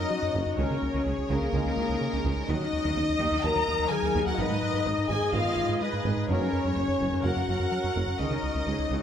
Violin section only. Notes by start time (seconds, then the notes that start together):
Already playing: D#5
0.58 C#5
1.29 A#4
2.49 D#5
3.44 A#5
3.90 G#5
4.26 F#5
4.38 D#5
5.09 G#5
5.34 F5
5.81 D#5
6.30 C#5
7.24 F#5
8.20 D#5